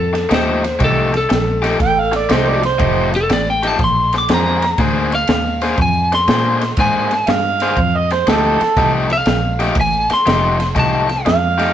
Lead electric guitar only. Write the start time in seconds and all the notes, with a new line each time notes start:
Already playing: A4
0.34 C5
0.84 A4
1.17 A4
3.16 A4
3.33 D5
3.50 G5
3.67 A5
3.84 C6
4.18 D6
4.34 A#5
5.15 F5
5.82 G#5
6.15 C6
6.81 G#5
9.13 F5
9.81 G#5
10.13 C6
10.79 A5